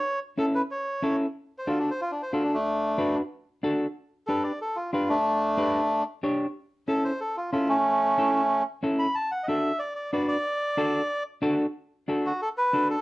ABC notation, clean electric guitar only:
X:1
M:4/4
L:1/8
Q:1/4=185
K:D
V:1 name="Clean electric guitar"
z2 [CEA] z3 [CEA] z | z2 [DFA] z3 [DFA] z | z2 [DFB] z3 [DFA] z | z2 [DGB] z3 [DGB] z |
z2 [DGB] z3 [DGc] z | z2 [CEA] z3 [CEA] z | z2 [CEA] z3 [CEA] z | z2 [DFA] z3 [DFB] z |
z2 [DFA] z3 [DFA] z | z2 [DFA] z3 [DFA] z |]